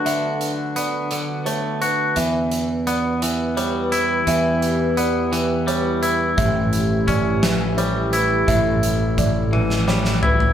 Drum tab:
HH |x-x-x-x-x-x-|x-x-x-x-x-x-|x-x-x-x-x-x-|x-x-x-x-x-x-|
SD |------------|------------|------------|------o-----|
T1 |------------|------------|------------|------------|
FT |------------|------------|------------|------------|
BD |------------|------------|------------|o---o-------|

HH |x-x-x-------|
SD |-------ooo--|
T1 |------o-----|
FT |----------oo|
BD |o---o-------|